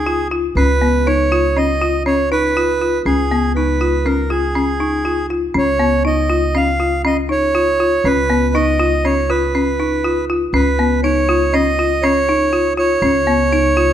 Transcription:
0.00 0.52 C#2 medium
0.00 0.28 G#4 medium
0.06 0.26 F4 medium
0.32 0.51 F4 medium
0.55 3.01 C#2 medium
0.55 0.76 C#4 medium
0.55 1.08 B4 medium
0.82 1.01 B3 medium
1.06 1.26 D#4 medium
1.06 1.58 C#5 medium
1.32 1.51 F4 medium
1.57 1.76 C#4 medium
1.57 2.03 D#5 medium
1.82 2.01 F4 medium
2.06 2.25 C#4 medium
2.06 2.30 C#5 medium
2.32 2.51 D#4 medium
2.32 3.02 B4 medium
2.57 2.76 F4 medium
2.82 3.00 F4 medium
3.05 5.51 C#2 medium
3.05 3.25 C#4 medium
3.05 3.52 G#4 medium
3.31 3.50 B3 medium
3.56 3.75 D#4 medium
3.56 4.07 B4 medium
3.81 4.00 F4 medium
4.05 4.25 C#4 medium
4.05 4.31 A#4 medium
4.30 4.50 F4 medium
4.30 5.26 G#4 medium
4.55 4.75 C#4 medium
4.80 4.99 D#4 medium
5.05 5.24 F4 medium
5.30 5.49 F4 medium
5.54 8.00 C#2 medium
5.54 5.74 C#4 medium
5.54 6.03 C#5 medium
5.79 5.99 B3 medium
6.05 6.24 D#4 medium
6.05 6.57 D#5 medium
6.30 6.49 F4 medium
6.55 6.74 C#4 medium
6.55 7.02 F5 medium
6.80 6.99 F4 medium
7.05 7.24 C#4 medium
7.05 7.17 D#5 medium
7.29 7.49 D#4 medium
7.29 8.08 C#5 medium
7.55 7.74 F4 medium
7.80 7.99 F4 medium
8.04 10.50 C#2 medium
8.04 8.24 C#4 medium
8.04 8.56 B4 medium
8.30 8.49 B3 medium
8.55 8.74 D#4 medium
8.55 9.06 D#5 medium
8.80 8.99 F4 medium
9.05 9.24 C#4 medium
9.05 9.30 C#5 medium
9.29 9.49 F4 medium
9.29 10.25 B4 medium
9.55 9.74 C#4 medium
9.80 9.99 D#4 medium
10.04 10.23 F4 medium
10.30 10.49 F4 medium
10.53 12.98 C#2 medium
10.53 10.73 C#4 medium
10.53 11.01 B4 medium
10.79 10.98 B3 medium
11.03 11.23 D#4 medium
11.03 11.55 C#5 medium
11.29 11.48 F4 medium
11.53 11.73 C#4 medium
11.53 12.05 D#5 medium
11.79 11.98 F4 medium
12.02 12.22 C#4 medium
12.02 12.73 C#5 medium
12.29 12.48 D#4 medium
12.53 12.72 F4 medium
12.78 12.97 F4 medium
12.78 13.93 C#5 medium
13.02 13.93 C#2 medium
13.02 13.22 C#4 medium
13.27 13.46 B3 medium
13.53 13.72 D#4 medium
13.77 13.93 F4 medium

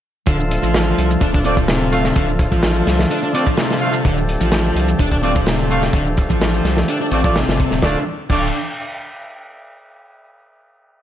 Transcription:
0.27 0.59 D1 medium
0.27 7.79 D3 medium
0.27 0.36 D3 medium
0.27 7.79 F3 medium
0.27 7.79 A3 medium
0.27 4.01 F4 medium
0.27 7.79 A4 medium
0.27 kick loud
0.27 closed hi-hat medium
0.27 shaker medium
0.40 shaker soft
0.51 closed hi-hat medium
0.63 0.95 A1 medium
0.63 1.09 F3 medium
0.63 closed hi-hat soft
0.63 shaker medium
0.74 snare loud
0.74 closed hi-hat medium
0.74 shaker medium
0.87 shaker soft
0.98 1.17 C2 loud
0.98 closed hi-hat medium
1.11 shaker medium
1.21 2.12 D1 loud
1.21 1.30 D4 medium
1.21 kick loud
1.21 closed hi-hat medium
1.21 shaker medium
1.34 1.39 D4 medium
1.34 kick loud
1.34 shaker soft
1.45 1.60 A3 medium
1.45 1.54 C4 medium
1.45 1.60 D4 medium
1.45 1.60 F4 medium
1.45 1.60 D5 medium
1.45 closed hi-hat medium
1.57 1.68 F3 medium
1.57 kick medium
1.57 shaker medium
1.68 2.15 C3 medium
1.68 snare loud
1.68 closed hi-hat medium
1.68 shaker medium
1.81 shaker soft
1.92 2.07 A3 medium
1.92 2.07 F4 medium
1.92 2.07 F5 medium
1.92 closed hi-hat medium
2.05 snare soft
2.05 shaker medium
2.16 2.48 D1 loud
2.16 2.25 D3 medium
2.16 kick medium
2.16 closed hi-hat medium
2.16 shaker medium
2.29 shaker soft
2.39 kick loud
2.39 closed hi-hat medium
2.52 2.83 A1 medium
2.52 2.98 F3 medium
2.52 kick medium
2.52 shaker medium
2.63 snare loud
2.63 closed hi-hat medium
2.63 shaker medium
2.76 shaker soft
2.87 3.06 C2 loud
2.87 snare soft
2.87 closed hi-hat medium
2.99 snare soft
2.99 shaker medium
3.10 3.19 D4 medium
3.10 closed hi-hat medium
3.10 shaker medium
3.23 3.28 D4 medium
3.23 shaker soft
3.34 3.48 A3 medium
3.34 3.43 C4 medium
3.34 3.49 D4 medium
3.34 3.49 F4 medium
3.34 3.49 D5 medium
3.34 closed hi-hat medium
3.46 3.57 F3 medium
3.46 kick loud
3.46 shaker medium
3.57 4.04 C3 medium
3.57 snare loud
3.57 closed hi-hat medium
3.57 shaker medium
3.70 snare medium
3.70 shaker soft
3.81 3.96 A3 medium
3.81 3.96 F4 medium
3.81 3.96 F5 loud
3.93 shaker medium
4.05 4.37 D1 loud
4.05 4.14 D3 medium
4.05 7.79 G4 medium
4.05 kick loud
4.05 closed hi-hat medium
4.05 shaker medium
4.17 shaker soft
4.29 closed hi-hat medium
4.41 4.72 A1 medium
4.41 4.87 F3 medium
4.41 closed hi-hat soft
4.41 shaker medium
4.52 snare loud
4.52 closed hi-hat medium
4.52 shaker medium
4.64 shaker soft
4.75 4.95 C2 loud
4.75 closed hi-hat medium
4.88 shaker medium
4.99 5.90 D1 loud
4.99 5.08 D4 medium
4.99 kick loud
4.99 closed hi-hat medium
4.99 shaker medium
5.12 5.17 D4 medium
5.12 kick medium
5.12 shaker soft
5.23 5.38 A3 medium
5.23 5.32 C4 medium
5.23 5.38 D4 medium
5.23 5.38 F4 medium
5.23 5.38 D5 medium
5.23 closed hi-hat medium
5.35 5.46 F3 medium
5.35 kick medium
5.35 shaker medium
5.47 5.93 C3 medium
5.47 snare loud
5.47 closed hi-hat medium
5.47 shaker medium
5.59 shaker soft
5.70 5.85 A3 medium
5.70 5.85 F4 medium
5.70 5.85 F5 medium
5.70 closed hi-hat medium
5.83 snare soft
5.83 shaker medium
5.93 6.26 D1 loud
5.93 6.03 D3 medium
5.93 kick loud
5.93 closed hi-hat medium
5.93 shaker medium
6.06 shaker soft
6.17 kick loud
6.17 closed hi-hat medium
6.30 6.61 A1 medium
6.30 6.76 F3 medium
6.30 kick medium
6.30 shaker medium
6.41 snare loud
6.41 closed hi-hat medium
6.41 shaker soft
6.54 shaker soft
6.64 6.84 C2 loud
6.64 snare soft
6.64 closed hi-hat medium
6.77 snare soft
6.77 shaker medium
6.88 6.97 D4 medium
6.88 closed hi-hat medium
6.88 shaker medium
7.01 7.06 D4 medium
7.01 shaker soft
7.11 7.44 A1 medium
7.11 7.23 A3 medium
7.11 7.21 C4 medium
7.11 7.23 D4 medium
7.11 7.23 F4 medium
7.11 7.23 D5 medium
7.11 closed hi-hat medium
7.24 7.35 F3 medium
7.24 7.38 A3 medium
7.24 7.38 D4 medium
7.24 7.38 F4 medium
7.24 7.38 D5 medium
7.24 kick medium
7.24 shaker medium
7.36 7.82 C3 medium
7.36 snare loud
7.36 closed hi-hat medium
7.36 shaker medium
7.48 7.67 G1 medium
7.48 snare medium
7.48 shaker soft
7.60 kick medium
7.60 closed hi-hat medium
7.71 7.81 D1 medium
7.71 snare soft
7.71 shaker medium
7.82 7.96 D1 loud
7.82 8.05 D3 medium
7.82 7.97 D3 medium
7.82 8.05 F3 medium
7.82 8.05 A3 medium
7.82 7.97 A3 medium
7.82 7.97 D4 medium
7.82 8.05 F4 medium
7.82 7.97 F4 medium
7.82 8.05 A4 medium
7.82 7.97 D5 medium
7.82 kick loud
7.82 snare medium
8.30 8.52 D1 loud
8.30 8.52 D3 medium
8.30 8.48 A3 medium
8.30 8.48 D4 medium
8.30 8.48 F4 medium
8.30 8.48 D5 medium
8.30 kick loud
8.30 crash medium

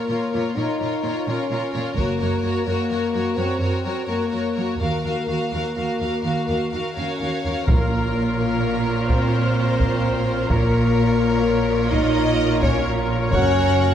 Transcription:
0.00 0.54 A#3 medium
0.07 0.18 A#2 soft
0.07 0.32 F4 soft
0.07 0.32 A#4 soft
0.07 0.32 C#5 soft
0.33 0.42 A#2 soft
0.33 0.56 F4 soft
0.33 0.55 A#4 soft
0.33 0.55 C#5 soft
0.56 0.65 A#2 soft
0.56 1.27 D#4 medium
0.56 0.79 F4 soft
0.56 0.79 A#4 soft
0.56 0.79 C#5 soft
0.80 0.89 A#2 soft
0.80 1.03 F4 soft
0.80 1.02 A#4 soft
0.80 1.02 C#5 soft
1.03 1.12 A#2 soft
1.03 1.26 F4 soft
1.03 1.26 A#4 soft
1.03 1.26 C#5 soft
1.27 1.35 A#2 soft
1.27 1.97 C#4 medium
1.27 1.50 F4 soft
1.27 1.49 A#4 soft
1.27 1.50 C#5 soft
1.50 1.59 A#2 soft
1.50 1.72 F4 soft
1.50 1.72 A#4 soft
1.50 1.72 C#5 soft
1.73 1.83 A#2 soft
1.73 1.96 F4 soft
1.73 1.94 A#4 soft
1.73 1.95 C#5 soft
1.96 2.19 F#1 medium
1.96 2.06 F#2 soft
1.96 2.65 A#3 medium
1.96 2.20 F#4 soft
1.96 2.18 A#4 soft
1.96 2.18 C#5 soft
1.96 taiko soft
2.19 2.28 F#2 soft
2.19 2.43 F#4 soft
2.19 2.41 A#4 soft
2.19 2.42 C#5 soft
2.42 2.52 F#2 soft
2.42 2.67 F#4 soft
2.42 2.64 A#4 soft
2.42 2.66 C#5 soft
2.65 2.75 F#2 soft
2.65 3.36 A#3 medium
2.65 2.90 F#4 soft
2.65 2.89 A#4 soft
2.65 2.91 C#5 soft
2.90 2.98 F#2 soft
2.90 3.13 F#4 soft
2.90 3.13 A#4 soft
2.90 3.12 C#5 soft
3.14 3.22 F#2 soft
3.14 3.37 F#4 soft
3.14 3.35 A#4 soft
3.14 3.35 C#5 soft
3.36 3.46 F#2 medium
3.36 4.08 C4 medium
3.36 3.60 F#4 soft
3.36 3.59 A#4 soft
3.36 3.60 C#5 soft
3.60 3.68 F#2 medium
3.60 3.84 F#4 soft
3.60 3.83 A#4 soft
3.60 3.83 C#5 soft
3.84 3.93 F#2 soft
3.84 4.07 F#4 soft
3.84 4.06 A#4 soft
3.84 4.05 C#5 soft
4.07 4.16 F#2 soft
4.07 4.78 A#3 medium
4.07 4.31 F#4 soft
4.07 4.29 A#4 soft
4.07 4.30 C#5 soft
4.30 4.40 F#2 soft
4.30 4.55 F#4 soft
4.30 4.53 A#4 soft
4.30 4.55 C#5 soft
4.54 4.65 F#2 soft
4.54 4.79 F#4 soft
4.54 4.77 A#4 soft
4.54 4.79 C#5 soft
4.78 5.02 D#2 soft
4.78 4.88 D#2 soft
4.78 6.79 A#3 medium
4.78 5.03 F#4 soft
4.78 5.02 A#4 soft
4.78 5.04 F5 soft
5.03 5.12 D#2 soft
5.03 5.26 F#4 soft
5.03 5.27 A#4 soft
5.03 5.28 F5 soft
5.27 5.36 D#2 soft
5.27 5.51 F#4 soft
5.27 5.50 A#4 soft
5.27 5.51 F5 soft
5.51 5.61 D#2 soft
5.51 5.74 F#4 soft
5.51 5.75 A#4 soft
5.51 5.75 F5 soft
5.75 5.84 D#2 soft
5.75 5.99 F#4 soft
5.75 5.97 A#4 soft
5.75 5.99 F5 soft
5.98 6.09 D#2 soft
5.98 6.22 F#4 soft
5.98 6.21 A#4 soft
5.98 6.22 F5 soft
6.22 6.33 D#2 soft
6.22 6.47 F#4 soft
6.22 6.45 A#4 soft
6.22 6.47 F5 soft
6.47 6.57 D#2 soft
6.47 6.70 F#4 soft
6.47 6.70 A#4 soft
6.47 6.71 F5 soft
6.71 6.82 D#2 soft
6.71 6.95 F#4 soft
6.71 6.95 A#4 soft
6.71 6.94 F5 soft
6.95 7.06 D#2 soft
6.95 7.64 C#4 soft
6.95 7.19 F#4 soft
6.95 7.18 A#4 soft
6.95 7.64 C#5 soft
6.95 7.19 F5 soft
7.19 7.29 D#2 soft
7.19 7.44 F#4 soft
7.19 7.42 A#4 soft
7.19 7.43 F5 soft
7.43 7.53 D#2 soft
7.43 7.68 F#4 soft
7.43 7.66 A#4 soft
7.43 7.68 F5 soft
7.67 10.47 A#1 soft
7.67 8.35 A#2 medium
7.67 10.47 A#2 soft
7.67 10.46 A#3 soft
7.67 8.38 A#3 medium
7.67 10.47 F4 soft
7.67 10.46 A#4 soft
7.67 8.37 A#4 medium
7.67 10.47 A#4 soft
7.67 10.46 C#5 soft
7.67 10.46 F5 soft
7.67 taiko medium
8.38 9.08 A#3 medium
8.38 9.08 A#4 soft
9.09 10.51 C4 medium
9.09 10.48 C5 medium
9.09 taiko medium
9.80 taiko medium
10.49 13.28 A#1 soft
10.49 13.28 A#2 soft
10.49 11.89 A#3 medium
10.49 13.94 A#3 soft
10.49 13.29 F4 medium
10.49 11.91 A#4 medium
10.49 13.94 A#4 medium
10.49 13.94 A#4 soft
10.49 13.28 C#5 medium
10.49 13.29 C#5 soft
10.49 taiko medium
11.91 12.61 D#4 medium
11.91 12.62 D#5 medium
11.91 taiko medium
12.61 12.85 C#4 medium
12.61 12.85 C#5 medium
12.61 taiko medium
13.31 13.94 F#1 medium
13.31 13.94 F#2 medium
13.31 13.94 C#4 loud
13.31 13.94 F#4 medium
13.31 13.94 C#5 medium
13.31 13.94 F#5 medium
13.31 taiko medium

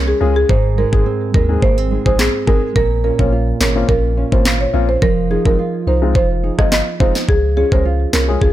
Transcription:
0.00 0.14 C2 medium
0.00 0.21 G#3 medium
0.00 0.55 C#4 medium
0.00 1.16 F4 medium
0.08 0.18 G#4 medium
0.21 0.44 C#2 medium
0.21 0.33 G#3 medium
0.21 0.77 G#3 medium
0.21 0.33 C#4 medium
0.21 0.33 F4 medium
0.21 0.33 G#4 medium
0.36 0.47 G#4 medium
0.49 0.85 G#1 loud
0.49 2.75 G#2 medium
0.49 0.61 C5 medium
0.49 kick loud
0.77 1.33 G#3 medium
0.77 0.83 D#4 soft
0.77 0.84 G#4 soft
0.77 0.90 A#4 medium
0.92 1.04 G#1 medium
0.92 1.03 G#3 medium
0.92 1.03 C4 medium
0.92 1.03 D#4 medium
0.92 1.03 G#4 medium
0.92 kick medium
1.06 1.62 C4 medium
1.34 1.58 D#2 medium
1.34 1.90 G#3 medium
1.34 1.40 D#4 soft
1.34 1.40 A#4 soft
1.34 1.46 A#4 medium
1.34 kick medium
1.49 1.60 G#3 medium
1.49 1.60 C4 medium
1.49 1.60 D#4 medium
1.49 1.60 G#4 medium
1.62 1.98 G#1 loud
1.62 1.78 A#3 medium
1.62 1.74 C5 medium
1.62 kick medium
1.78 2.18 C4 medium
1.91 2.46 G#3 medium
1.91 1.97 D#4 soft
1.91 1.97 G#4 soft
2.06 2.29 A#1 medium
2.06 2.16 G#3 medium
2.06 2.16 C4 medium
2.06 2.16 D#4 medium
2.06 2.17 G#4 medium
2.06 2.16 C5 medium
2.06 kick loud
2.19 3.04 C4 medium
2.19 2.31 G#4 medium
2.19 snare loud
2.19 clap loud
2.47 2.60 G#1 medium
2.47 2.59 G#3 medium
2.47 2.82 G#3 medium
2.47 2.59 C4 medium
2.47 2.59 D#4 medium
2.47 2.60 G#4 medium
2.47 2.59 A#4 medium
2.47 kick medium
2.76 3.11 A#1 loud
2.76 5.02 A#2 medium
2.76 2.88 A#4 loud
2.76 kick loud
3.04 3.10 C#4 soft
3.04 3.59 C#4 medium
3.04 3.10 F4 soft
3.04 3.16 A#4 medium
3.19 3.53 A#1 medium
3.19 3.30 A#3 medium
3.19 3.30 C4 medium
3.19 3.30 C#4 medium
3.19 3.30 F4 medium
3.19 3.30 C#5 medium
3.19 kick medium
3.32 3.88 F4 medium
3.60 3.84 G#1 medium
3.60 4.16 C#4 medium
3.60 3.67 C#4 soft
3.60 3.67 G#4 soft
3.60 3.73 A#4 medium
3.60 snare loud
3.60 clap medium
3.75 3.86 A#3 medium
3.75 3.86 C4 medium
3.75 3.86 C#4 medium
3.75 3.86 F4 medium
3.89 4.24 A#1 loud
3.89 4.45 F4 medium
3.89 4.01 A#4 medium
3.89 kick medium
4.17 4.23 C#4 soft
4.17 4.73 C#4 medium
4.17 4.23 F4 soft
4.32 4.66 G#1 loud
4.32 4.43 A#3 medium
4.32 4.43 C4 medium
4.32 4.43 C#4 medium
4.32 4.43 F4 medium
4.32 4.43 C5 medium
4.32 kick medium
4.45 5.34 F4 medium
4.45 snare loud
4.45 clap loud
4.61 4.71 C#5 medium
4.73 4.97 A#1 medium
4.73 4.86 A#3 medium
4.73 4.86 C4 medium
4.73 4.86 C#4 medium
4.73 5.08 C#4 medium
4.73 4.86 F4 medium
4.89 4.99 C5 medium
5.02 5.38 F1 loud
5.02 8.52 F3 medium
5.02 5.14 A#4 medium
5.02 kick loud
5.30 5.36 D#4 soft
5.30 5.86 D#4 medium
5.30 5.36 F4 soft
5.30 5.43 G#4 medium
5.45 5.56 F1 medium
5.45 5.56 G#3 medium
5.45 5.56 C4 medium
5.45 5.56 D#4 medium
5.45 5.56 F4 medium
5.45 5.56 A#4 medium
5.45 kick medium
5.59 6.15 F4 medium
5.87 6.17 C2 medium
5.87 5.93 D#4 soft
5.87 6.42 D#4 medium
5.87 5.93 F4 soft
5.87 5.99 C5 medium
6.02 6.13 G#3 medium
6.02 6.13 C4 medium
6.02 6.13 D#4 medium
6.02 6.13 F4 medium
6.15 6.51 F1 loud
6.15 6.72 F4 medium
6.15 6.27 C5 medium
6.15 kick medium
6.43 6.50 D#4 soft
6.43 6.99 D#4 medium
6.43 6.50 G#4 soft
6.58 6.82 G1 loud
6.58 6.69 G#3 medium
6.58 6.69 C4 medium
6.58 6.69 D#4 medium
6.58 6.69 F4 medium
6.58 6.69 D#5 medium
6.58 kick medium
6.58 cross-stick medium
6.72 7.85 F4 medium
6.72 6.84 D#5 medium
6.72 snare loud
6.72 clap loud
7.00 7.13 F1 medium
7.00 7.12 G#3 medium
7.00 7.12 C4 medium
7.00 7.12 D#4 medium
7.00 7.35 D#4 medium
7.00 7.12 F4 medium
7.00 7.12 C5 medium
7.00 kick medium
7.15 snare medium
7.29 7.64 C#2 loud
7.29 7.41 G#4 medium
7.29 kick loud
7.57 8.12 C#4 medium
7.57 7.63 F4 soft
7.57 7.63 G#4 soft
7.57 7.69 G#4 medium
7.72 8.06 C#2 medium
7.72 7.83 G#3 medium
7.72 7.83 C#4 medium
7.72 7.83 F4 medium
7.72 7.83 A#4 medium
7.72 7.82 C5 medium
7.72 kick medium
7.85 8.41 F4 medium
8.13 8.37 C2 medium
8.13 8.53 C#4 medium
8.13 8.19 F4 soft
8.13 8.20 G#4 soft
8.13 8.25 A#4 medium
8.13 snare loud
8.13 clap medium
8.28 8.39 G#3 medium
8.28 8.39 C#4 medium
8.28 8.39 F4 medium
8.28 8.39 G#4 medium
8.41 8.53 C#2 loud
8.41 8.53 F4 medium
8.41 8.53 G#4 medium
8.41 kick medium

